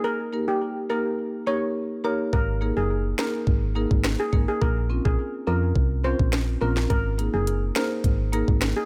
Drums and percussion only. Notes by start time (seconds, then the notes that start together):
2.33 kick
3.19 cross-stick, snare
3.47 kick
3.91 kick
4.04 cross-stick, snare
4.33 kick
4.62 kick
5.05 kick
5.76 kick
6.19 kick
6.33 cross-stick, snare
6.77 snare
6.90 kick, closed hi-hat
7.19 closed hi-hat
7.47 closed hi-hat
7.76 cross-stick, snare, closed hi-hat
8.04 kick, closed hi-hat
8.33 closed hi-hat
8.48 kick
8.62 cross-stick, snare, closed hi-hat